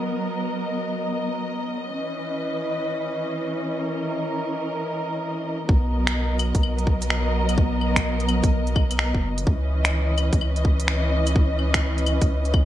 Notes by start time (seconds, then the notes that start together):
Already playing: F#3 B3 A#4 D#5
1.90 E3 C#4 B4
3.80 A#4
5.69 B1 F#3 B3 A#4 D#5, kick
6.07 finger snap, closed hi-hat
6.39 closed hi-hat, claves
6.55 B1, kick, closed hi-hat
6.63 claves
6.78 closed hi-hat
6.87 kick
7.02 closed hi-hat
7.10 finger snap
7.49 closed hi-hat, claves
7.58 kick
7.81 claves
7.96 finger snap, kick, closed hi-hat
8.20 closed hi-hat
8.29 closed hi-hat, claves
8.44 B1, kick, closed hi-hat
8.67 closed hi-hat
8.76 kick, claves
8.91 closed hi-hat, claves
8.99 finger snap
9.14 F#1, kick
9.38 closed hi-hat
9.46 C#2 E3 C#4 B4 D#5, kick
9.85 finger snap, closed hi-hat
10.18 closed hi-hat, claves
10.33 C#2, kick, closed hi-hat
10.41 claves
10.56 closed hi-hat
10.65 kick
10.80 closed hi-hat
10.88 finger snap
11.27 closed hi-hat, claves
11.36 kick
11.59 claves
11.74 finger snap, kick, closed hi-hat
11.98 closed hi-hat
12.06 closed hi-hat, claves
12.21 C#2, kick, closed hi-hat
12.45 closed hi-hat
12.54 kick, claves